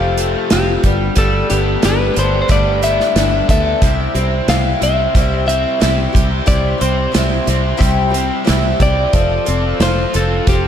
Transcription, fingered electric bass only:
Already playing: F1
0.52 F1
0.84 G1
1.17 G1
1.51 G1
1.85 G1
2.17 G1
2.50 G1
3.16 G1
3.49 D2
3.82 C2
4.15 C2
4.48 C2
4.82 C2
5.15 C2
5.82 C2
6.15 C2
6.48 C2
6.81 C2
7.15 C2
7.47 C2
7.80 C2
8.49 C2
8.81 C2
9.13 F1
9.48 F1
9.80 F1
10.15 F1
10.47 F1

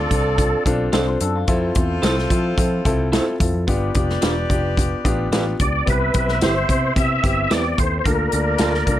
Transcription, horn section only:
Already playing: F4 A4 D5
1.47 F4 A4 C5
3.67 G4 B4 D5
5.86 C4 E4 E5
8.06 A#3 D4 D5

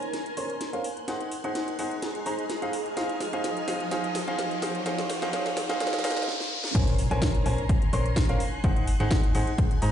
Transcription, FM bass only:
0.37 A#1
0.73 A#1
1.08 G#1
1.44 G#1
1.79 G#1
2.26 G#1
2.62 F1
2.97 F1
3.33 F1
3.68 F1
4.28 F1
5.22 D#1
6.75 A#1
7.11 A#1
7.46 A#1
7.93 A#1
8.29 A#1
8.64 G#1
9.00 G#1
9.35 G#1
9.82 G#2

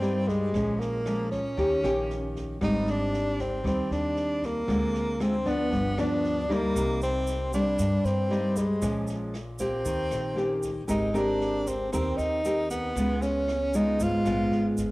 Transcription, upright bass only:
Already playing: G2
0.54 A#1
1.57 D#2
1.84 A#1
2.61 G#1
3.65 D#2
3.91 D#2
4.68 D2
5.72 G1
5.98 D2
6.75 C2
7.79 G2
8.04 G2
8.82 A#1
9.85 D#2
10.11 A#1
10.89 G#1
11.93 D#2
12.18 D#2
12.96 C#2
14.00 G#1
14.26 A#1
14.52 G#1
14.78 G1

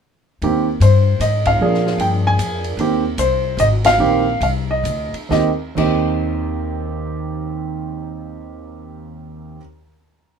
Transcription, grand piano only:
0.43 D#3 A#3 C4 G4
0.82 C5
1.21 D#5
1.47 F5
1.61 F3 A#3 D4 G#4
2.01 G5
2.27 G#5
2.79 D#3 A#3 C4 G4
3.19 C5
3.60 D#5
3.86 F5
3.99 D#3 A#3 C4 G4
4.43 F5
4.71 D#5
5.29 D#2 D#3 C4 G4 D#5
5.75 D#2 D#3 C4 G4 D#5

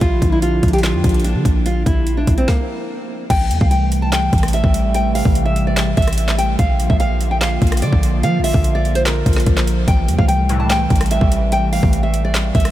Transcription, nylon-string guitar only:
0.01 F4
0.32 E4
0.42 F4
0.73 G4
0.83 F4
1.25 D4
1.66 F4
1.86 E4
2.17 D4
2.38 C4
2.48 A#3
3.30 G5
3.61 F5
3.71 G5
4.02 A5
4.13 G5
4.54 E5
4.95 G5
5.15 F5
5.45 E5
5.67 D5
5.97 E5
6.38 G5
6.59 F5
6.90 E5
7.00 F5
7.31 G5
7.41 F5
7.82 D5
8.24 F5
8.44 E5
8.75 D5
8.95 C5
9.06 A#4
9.88 G5
10.19 F5
10.28 G5
10.60 A5
10.71 G5
11.11 E5
11.52 G5
11.73 F5
12.03 E5
12.25 D5
12.55 E5

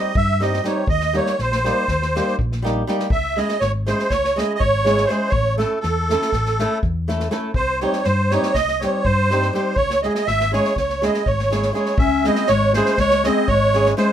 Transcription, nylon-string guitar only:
Already playing: G3 C4 D#4 G4
0.40 G3 C4 D#4 G4
0.64 G3 C4 D#4 G4
1.13 G3 A#3 D#4 G4
1.64 G3 A#3 D#4 G4
2.15 G3 A#3 D#4 G4
2.62 G3 A#3 D#4 G4
2.87 G3 A#3 D#4 G4
3.36 G#3 C#4 E4 G#4
3.86 G#3 C#4 E4 G#4
4.36 G#3 C#4 E4 G#4
4.85 G#3 C#4 E4 G#4
5.09 G#3 C#4 E4 G#4
5.58 A3 C#4 E4 A4
6.10 A3 C#4 E4 A4
6.60 A3 C#4 E4 A4
7.08 A3 C#4 E4 A4
7.31 A3 C#4 E4 A4
7.81 G3 C4 D#4 G4
8.31 G3 C4 D#4 G4
8.82 G3 C4 D#4 G4
9.30 G3 C4 D#4 G4
9.53 G3 C4 D#4 G4
10.04 G#3 C#4 E4 G#4
10.52 G#3 C#4 E4 G#4
11.02 G#3 C#4 E4 G#4
11.50 G#3 C#4 E4 G#4
11.73 G#3 C#4 E4 G#4
12.25 G#3 C#4 E4 G#4
12.75 G#3 C#4 E4 G#4
13.24 G#3 C#4 E4 G#4
13.74 G#3 C#4 E4 G#4
13.97 G#3 C#4 E4 G#4

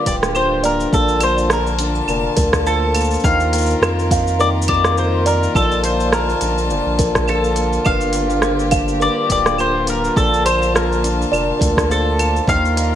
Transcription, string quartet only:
Already playing: D3 A#3 F4 G4
0.94 D3 A5
3.25 D#3 A#4
5.56 D3 A5
7.87 G4
10.17 A5
12.47 D#3 A#3 F4 A#4

